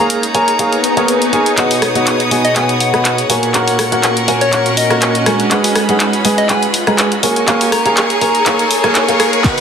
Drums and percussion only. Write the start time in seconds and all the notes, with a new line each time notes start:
0.10 closed hi-hat
0.23 closed hi-hat
0.35 closed hi-hat
0.48 closed hi-hat
0.59 closed hi-hat
0.73 closed hi-hat
0.84 closed hi-hat
0.97 closed hi-hat
1.08 closed hi-hat
1.22 closed hi-hat
1.33 closed hi-hat
1.46 closed hi-hat
1.57 clap, closed hi-hat
1.71 open hi-hat
1.82 cross-stick, open hi-hat
1.95 closed hi-hat
2.07 clap, closed hi-hat
2.20 closed hi-hat
2.31 open hi-hat
2.45 closed hi-hat
2.56 clap, closed hi-hat
2.69 closed hi-hat
2.80 open hi-hat
2.94 cross-stick, closed hi-hat
3.05 clap, closed hi-hat
3.18 closed hi-hat
3.30 open hi-hat
3.43 closed hi-hat
3.54 clap, closed hi-hat
3.68 open hi-hat
3.79 cross-stick, open hi-hat
3.92 closed hi-hat
4.03 clap, closed hi-hat
4.17 closed hi-hat
4.28 open hi-hat
4.41 closed hi-hat
4.53 clap, closed hi-hat
4.66 closed hi-hat
4.77 open hi-hat
4.90 cross-stick, closed hi-hat
5.02 clap, closed hi-hat
5.15 closed hi-hat
5.26 cross-stick, open hi-hat
5.40 closed hi-hat
5.51 clap, closed hi-hat
5.64 open hi-hat
5.76 cross-stick, open hi-hat
5.89 closed hi-hat
6.00 clap, closed hi-hat
6.13 closed hi-hat
6.25 open hi-hat
6.38 closed hi-hat
6.49 clap, closed hi-hat
6.63 closed hi-hat
6.74 open hi-hat
6.87 cross-stick, closed hi-hat
6.98 clap, closed hi-hat
7.12 closed hi-hat
7.23 open hi-hat
7.36 closed hi-hat
7.48 clap, closed hi-hat
7.61 open hi-hat
7.72 cross-stick, open hi-hat
7.86 closed hi-hat
7.97 clap, closed hi-hat
8.10 closed hi-hat
8.21 open hi-hat
8.35 closed hi-hat
8.46 clap, closed hi-hat
8.59 closed hi-hat
8.71 open hi-hat
8.84 cross-stick, closed hi-hat
8.95 clap, closed hi-hat
9.08 closed hi-hat
9.20 cross-stick, open hi-hat
9.33 closed hi-hat
9.44 kick, clap, closed hi-hat, tambourine